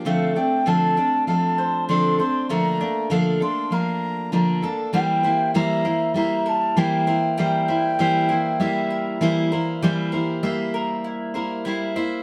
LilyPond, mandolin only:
\new Staff \with { instrumentName = "Mandolin" } { \time 4/4 \key c \mixolydian \tempo 4 = 98 a8 d'8 f''8 d'8 f''8 c''8 d'8 c''8 | a8 d'8 f''8 d'8 f''4 d'8 a'8 | g8 e'8 e''8 e'8 e''8 bes'8 e'8 bes'8 | g8 e'8 e''8 e'8 e''8 bes'8 e'8 bes'8 |
g8 bes'8 e''8 bes'8 e'8 bes'8 e'8 e''8 | }